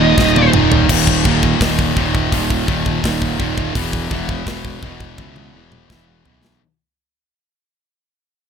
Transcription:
0.00 0.15 D#1 medium
0.00 0.17 D#2 medium
0.00 0.18 A#2 loud
0.00 0.18 D#3 loud
0.00 0.49 D#5 medium
0.18 0.50 D#1 loud
0.18 0.53 D#2 medium
0.18 0.53 A#2 medium
0.18 0.54 D#3 medium
0.18 kick loud
0.18 snare medium
0.36 high tom medium
0.54 0.86 D#1 medium
0.54 0.88 D#2 medium
0.54 0.88 A#2 medium
0.54 0.88 D#3 loud
0.54 mid tom medium
0.72 floor tom medium
0.89 1.53 D#1 medium
0.89 1.24 D#2 medium
0.89 1.25 A#2 loud
0.89 1.25 D#3 loud
0.89 kick medium
0.89 crash loud
1.07 kick medium
1.25 1.60 D#2 medium
1.25 1.61 A#2 medium
1.25 1.61 D#3 medium
1.25 kick medium
1.43 kick medium
1.61 1.92 D#1 medium
1.61 1.95 D#2 medium
1.61 1.96 A#2 medium
1.61 1.97 D#3 medium
1.61 kick medium
1.61 snare loud
1.61 open hi-hat medium
1.79 kick medium
1.97 2.28 D#1 medium
1.97 2.31 D#2 medium
1.97 2.32 A#2 medium
1.97 2.32 D#3 medium
1.97 kick medium
2.15 kick medium
2.32 2.64 D#1 medium
2.32 2.67 D#2 medium
2.32 2.68 A#2 medium
2.32 2.68 D#3 loud
2.32 kick medium
2.32 open hi-hat medium
2.50 kick medium
2.68 3.00 D#1 medium
2.68 3.02 D#2 medium
2.68 3.03 A#2 loud
2.68 3.03 D#3 loud
2.68 kick medium
2.86 kick medium
3.03 3.36 D#1 medium
3.03 3.38 D#2 medium
3.03 3.39 A#2 medium
3.03 3.39 D#3 medium
3.03 kick medium
3.03 snare loud
3.03 open hi-hat medium
3.22 kick medium
3.40 3.72 D#1 medium
3.40 3.73 D#2 medium
3.40 3.74 A#2 medium
3.40 3.74 D#3 medium
3.40 kick medium
3.58 kick medium
3.75 4.07 E1 medium
3.75 4.10 E2 medium
3.75 4.11 B2 loud
3.75 4.11 E3 medium
3.75 kick medium
3.75 open hi-hat medium
3.93 kick medium
4.11 4.43 E1 medium
4.11 4.46 E2 medium
4.11 4.46 B2 medium
4.11 4.47 E3 medium
4.11 kick medium
4.29 kick medium
4.47 4.79 E1 medium
4.47 4.82 E2 medium
4.47 4.83 B2 loud
4.47 4.84 E3 medium
4.47 kick medium
4.47 snare loud
4.47 open hi-hat soft
4.65 kick medium
4.83 5.14 E1 medium
4.83 5.18 E2 medium
4.83 5.19 B2 medium
4.83 5.19 E3 medium
4.83 kick medium
5.00 kick medium
5.18 5.50 C#2 medium
5.18 5.54 E2 medium
5.18 5.55 B2 medium
5.18 5.55 E3 medium
5.18 kick medium
5.18 high tom medium
5.36 high tom medium
5.54 5.86 E1 medium
5.54 5.90 E2 medium
5.54 5.91 B2 medium
5.54 5.91 E3 medium
5.72 mid tom medium
5.90 6.22 E1 medium
5.90 6.25 E2 medium
5.90 6.26 B2 medium
5.90 6.27 E3 medium
5.90 kick medium
5.90 snare medium
6.25 6.58 B1 medium
6.25 6.60 E2 medium
6.25 6.60 B2 medium
6.25 6.61 E3 medium
6.25 floor tom medium
6.45 snare medium

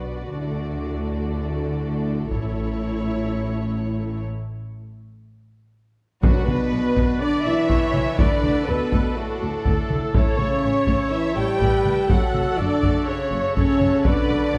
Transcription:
0.00 0.31 B1 soft
0.00 0.32 F#2 soft
0.00 0.31 B2 soft
0.00 0.32 B3 soft
0.00 2.27 D4 soft
0.00 2.27 F#4 soft
0.00 0.31 B4 soft
0.00 2.27 D5 soft
0.34 2.27 D2 soft
0.34 4.27 A2 soft
0.34 2.27 D3 soft
0.34 4.23 A3 soft
0.34 4.23 A4 soft
2.30 4.23 A1 medium
2.30 4.24 A2 medium
2.30 4.27 C#4 medium
2.30 4.23 E4 medium
2.30 4.23 C#5 soft
2.30 taiko medium
6.22 6.31 B1 medium
6.22 6.46 F#2 medium
6.22 6.31 B2 medium
6.22 6.93 B2 medium
6.22 6.45 F#3 medium
6.22 10.10 D4 medium
6.22 6.45 F#4 medium
6.22 8.14 F#4 medium
6.22 6.46 F#4 medium
6.22 8.14 B4 medium
6.22 10.09 F#5 medium
6.22 taiko loud
6.46 6.56 B1 medium
6.46 7.20 B2 medium
6.46 6.56 B2 medium
6.46 7.20 B3 medium
6.46 7.20 B4 medium
6.46 7.21 B4 medium
6.46 taiko mid soft
6.72 6.80 B1 medium
6.72 6.81 B2 soft
6.96 7.04 B1 medium
6.96 7.05 B2 medium
6.96 taiko medium
7.19 7.45 D3 medium
7.19 7.45 D4 medium
7.19 7.44 D5 medium
7.19 7.45 D5 medium
7.19 7.66 D5 medium
7.44 7.53 B1 medium
7.44 7.54 B2 soft
7.44 8.17 E3 medium
7.44 8.17 E4 medium
7.44 8.18 E5 medium
7.44 8.17 E5 medium
7.70 7.78 B1 medium
7.70 7.79 B2 medium
7.70 8.19 C#5 medium
7.70 taiko medium
7.94 8.03 B1 soft
7.94 8.03 B2 medium
7.94 taiko mid soft
8.18 8.27 D2 medium
8.18 8.67 D3 medium
8.18 8.27 D3 medium
8.18 8.67 D4 medium
8.18 14.06 A4 medium
8.18 8.68 B4 medium
8.18 8.66 D5 medium
8.18 10.15 D5 medium
8.18 8.68 D5 medium
8.18 taiko medium
8.43 8.52 D2 medium
8.43 8.52 D3 medium
8.43 taiko mid soft
8.66 8.76 D2 medium
8.66 9.16 B2 medium
8.66 8.76 D3 soft
8.66 9.15 B3 medium
8.66 9.17 A4 medium
8.66 9.16 B4 medium
8.66 9.17 B4 medium
8.92 9.01 D2 medium
8.92 9.00 D3 medium
8.92 taiko medium
9.16 10.13 A2 medium
9.16 10.11 A3 medium
9.16 9.66 F#4 medium
9.16 10.13 A4 medium
9.16 10.12 A4 medium
9.41 9.49 D2 medium
9.41 9.50 D3 soft
9.65 9.74 D2 medium
9.65 9.73 D3 medium
9.65 10.13 A4 medium
9.65 taiko medium
9.90 9.98 D2 soft
9.90 9.98 D3 soft
9.90 taiko mid soft
10.13 10.23 A1 medium
10.13 10.38 A2 medium
10.13 10.23 A2 medium
10.13 10.37 A3 medium
10.13 12.10 E4 medium
10.13 10.37 A4 medium
10.13 10.38 A4 medium
10.13 10.62 C#5 medium
10.13 14.06 E5 medium
10.13 12.10 A5 medium
10.13 taiko medium
10.38 10.46 A1 medium
10.38 10.47 A2 medium
10.38 11.11 C#3 medium
10.38 11.11 C#4 medium
10.38 11.12 C#5 medium
10.38 taiko mid soft
10.63 10.72 A1 soft
10.63 10.72 A2 soft
10.63 11.59 C#5 medium
10.87 10.95 A1 medium
10.87 10.96 A2 medium
10.87 taiko medium
11.11 11.37 E3 medium
11.11 11.36 E4 medium
11.11 11.36 E5 medium
11.36 11.44 A1 soft
11.36 11.44 A2 medium
11.36 12.09 G3 medium
11.36 12.08 G4 medium
11.36 12.08 G5 medium
11.36 12.10 G5 medium
11.60 11.69 A1 medium
11.60 11.69 A2 medium
11.60 12.08 B4 medium
11.60 taiko medium
11.85 11.93 A1 soft
11.85 11.93 A2 medium
11.85 taiko mid soft
12.09 12.17 F#1 medium
12.09 12.17 F#2 medium
12.09 12.57 F#3 medium
12.09 12.58 F#4 medium
12.09 14.58 F#4 medium
12.09 13.06 A4 medium
12.09 14.58 F#5 medium
12.09 12.58 F#5 medium
12.09 12.59 F#5 medium
12.09 taiko medium
12.34 12.42 F#1 medium
12.34 12.42 F#2 medium
12.34 taiko mid soft
12.58 12.66 F#1 soft
12.58 12.67 F#2 soft
12.58 13.07 D3 medium
12.58 13.08 D4 medium
12.58 13.07 D5 medium
12.83 12.91 F#1 medium
12.83 12.92 F#2 medium
12.83 taiko medium
13.06 13.55 C#3 medium
13.06 13.43 C#4 medium
13.06 13.56 C#5 medium
13.06 13.55 C#5 medium
13.31 13.39 F#1 soft
13.31 13.40 F#2 soft
13.55 13.64 F#1 medium
13.55 13.64 F#2 medium
13.55 14.04 C#3 medium
13.55 14.05 C#4 medium
13.55 14.04 A4 medium
13.55 14.04 C#5 medium
13.55 taiko medium
13.80 13.89 F#1 soft
13.80 13.88 F#2 soft
13.80 taiko mid soft
14.04 14.13 B1 medium
14.04 14.13 B2 medium
14.04 14.58 D3 medium
14.04 14.58 D4 medium
14.04 14.54 B4 medium
14.04 14.58 B4 medium
14.04 14.58 D5 medium
14.04 taiko medium
14.30 14.38 B1 medium
14.30 14.38 B2 medium
14.54 14.58 B1 medium
14.54 14.58 B2 soft
14.54 14.58 D5 medium

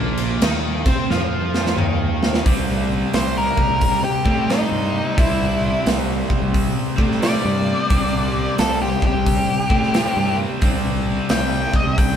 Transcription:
0.00 0.38 A#1 loud
0.00 0.41 A#2 medium
0.00 0.41 A#3 loud
0.18 crash medium
0.42 0.82 D#2 medium
0.42 0.85 D#3 medium
0.42 0.85 D#4 loud
0.42 snare loud
0.42 crash medium
0.86 1.08 C3 medium
0.86 1.09 C4 medium
0.86 1.09 C5 medium
0.86 kick loud
0.86 crash medium
1.10 1.74 F2 loud
1.10 1.76 F3 medium
1.10 1.77 F4 loud
1.10 snare medium
1.54 snare medium
1.66 snare medium
1.77 2.42 D#2 medium
1.77 2.44 D#3 medium
1.77 2.45 D#4 medium
1.77 mid tom medium
2.23 snare medium
2.34 snare medium
2.45 3.01 C2 medium
2.45 4.27 C3 medium
2.45 4.25 G3 medium
2.45 4.24 C4 medium
2.45 kick loud
2.45 open hi-hat medium
2.69 snare soft
3.13 3.49 C2 medium
3.13 3.36 C5 loud
3.13 snare loud
3.13 open hi-hat medium
3.37 4.03 A#4 medium
3.57 kick medium
3.69 3.97 C2 medium
3.81 kick medium
3.81 open hi-hat medium
4.04 4.49 G4 medium
4.25 4.63 A2 medium
4.25 4.48 C3 medium
4.25 4.49 G3 medium
4.25 4.50 C4 loud
4.25 kick medium
4.48 5.16 C3 medium
4.48 5.17 G3 medium
4.48 5.18 C4 medium
4.48 5.16 D#4 medium
4.48 snare loud
4.48 open hi-hat medium
4.71 4.99 G2 medium
5.16 5.73 C2 loud
5.16 6.98 C3 medium
5.16 6.97 G3 medium
5.16 6.96 C4 loud
5.16 5.85 E4 medium
5.16 kick loud
5.16 open hi-hat medium
5.86 6.22 C2 medium
5.86 snare loud
5.86 open hi-hat medium
6.30 kick medium
6.42 6.70 C2 medium
6.54 kick medium
6.54 open hi-hat medium
6.96 7.36 A2 medium
6.96 7.20 C3 medium
6.96 7.21 G3 medium
6.96 7.23 C4 medium
6.96 kick medium
7.12 snare soft
7.21 7.89 C3 medium
7.21 7.91 G3 medium
7.21 7.91 C4 medium
7.21 8.55 D5 loud
7.21 snare loud
7.21 open hi-hat medium
7.45 7.72 G2 loud
7.90 8.46 C2 loud
7.90 9.72 C3 medium
7.90 9.70 G3 medium
7.90 9.69 C4 loud
7.90 kick loud
7.90 open hi-hat medium
8.58 8.94 C2 medium
8.58 8.81 A4 medium
8.58 snare loud
8.58 open hi-hat medium
8.82 9.03 G4 medium
9.02 10.37 G4 medium
9.02 kick medium
9.14 9.42 C2 medium
9.27 kick medium
9.27 open hi-hat medium
9.70 10.08 A2 medium
9.70 9.93 C3 medium
9.70 9.95 G3 medium
9.70 9.96 C4 medium
9.70 kick medium
9.83 snare soft
9.94 10.60 C3 medium
9.94 10.62 G3 medium
9.94 10.63 C4 medium
9.94 snare loud
9.94 open hi-hat medium
10.16 10.44 G2 loud
10.61 11.18 C2 medium
10.61 12.16 C3 medium
10.61 12.16 G3 medium
10.61 12.16 C4 medium
10.61 kick loud
10.61 open hi-hat medium
11.29 11.66 C2 medium
11.29 11.75 G5 loud
11.29 snare loud
11.29 open hi-hat medium
11.74 11.98 D#5 medium
11.74 kick medium
11.86 12.14 C2 medium
11.98 12.16 G5 medium
11.98 kick medium
11.98 open hi-hat medium

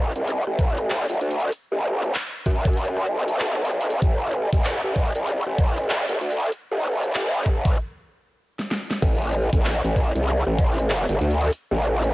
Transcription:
0.00 0.12 A1 loud
0.16 0.44 C2 medium
0.16 closed hi-hat medium
0.27 closed hi-hat medium
0.47 0.89 A1 medium
0.47 cross-stick soft
0.59 kick loud
0.59 closed hi-hat soft
0.78 cross-stick soft
0.78 closed hi-hat medium
0.89 1.06 G#1 medium
0.89 clap loud
1.09 1.19 G1 medium
1.09 closed hi-hat medium
1.21 1.50 D2 medium
1.21 closed hi-hat soft
1.31 closed hi-hat medium
1.40 closed hi-hat medium
1.52 closed hi-hat medium
1.72 2.13 A1 medium
2.03 closed hi-hat medium
2.15 clap loud
2.15 closed hi-hat medium
2.46 3.07 F#2 medium
2.46 kick medium
2.46 cross-stick medium
2.46 closed hi-hat soft
2.65 kick loud
2.65 closed hi-hat medium
2.67 closed hi-hat soft
2.73 closed hi-hat soft
2.77 closed hi-hat medium
2.84 closed hi-hat soft
2.88 closed hi-hat soft
2.97 cross-stick soft
3.08 4.00 B1 medium
3.28 closed hi-hat medium
3.40 clap loud
3.65 closed hi-hat medium
3.81 closed hi-hat medium
3.90 closed hi-hat medium
4.02 4.50 A1 loud
4.02 kick loud
4.02 closed hi-hat medium
4.53 4.81 A1 loud
4.53 kick loud
4.53 closed hi-hat medium
4.65 clap loud
4.65 closed hi-hat medium
4.84 5.12 A1 loud
4.96 kick medium
4.96 closed hi-hat soft
5.15 5.44 C2 medium
5.15 closed hi-hat medium
5.27 closed hi-hat medium
5.46 6.06 A1 medium
5.46 cross-stick soft
5.49 cross-stick soft
5.52 cross-stick soft
5.55 kick loud
5.55 cross-stick soft
5.55 closed hi-hat soft
5.63 cross-stick soft
5.68 cross-stick soft
5.68 closed hi-hat soft
5.73 cross-stick soft
5.78 cross-stick soft
5.78 closed hi-hat medium
5.84 closed hi-hat soft
5.90 clap loud
6.09 6.19 G1 medium
6.09 closed hi-hat medium
6.21 6.50 D2 loud
6.21 closed hi-hat medium
6.31 closed hi-hat medium
6.40 closed hi-hat medium
6.52 closed hi-hat medium
6.71 7.13 G1 loud
7.03 closed hi-hat soft
7.14 7.77 G1 loud
7.14 clap loud
7.14 closed hi-hat medium
7.46 kick medium
7.46 cross-stick medium
7.46 closed hi-hat soft
7.65 kick loud
7.65 closed hi-hat medium
8.59 snare soft
8.71 snare medium
8.90 snare medium
9.02 9.50 A1 loud
9.02 kick loud
9.02 closed hi-hat medium
9.02 crash loud
9.34 shaker medium
9.53 9.81 A1 loud
9.53 kick loud
9.53 closed hi-hat medium
9.65 clap loud
9.65 closed hi-hat medium
9.71 closed hi-hat medium
9.75 closed hi-hat soft
9.84 10.12 A1 loud
9.84 closed hi-hat soft
9.92 kick medium
9.92 closed hi-hat soft
9.96 closed hi-hat soft
10.15 10.43 C2 loud
10.15 closed hi-hat medium
10.28 closed hi-hat medium
10.46 11.06 A1 medium
10.46 cross-stick soft
10.59 kick loud
10.59 closed hi-hat soft
10.59 shaker medium
10.78 cross-stick soft
10.78 closed hi-hat medium
10.90 clap loud
11.09 11.19 G1 medium
11.09 closed hi-hat medium
11.21 11.50 D2 loud
11.21 closed hi-hat soft
11.31 closed hi-hat medium
11.41 closed hi-hat medium
11.53 closed hi-hat medium
11.71 12.13 A1 medium
11.84 shaker medium
12.03 closed hi-hat medium

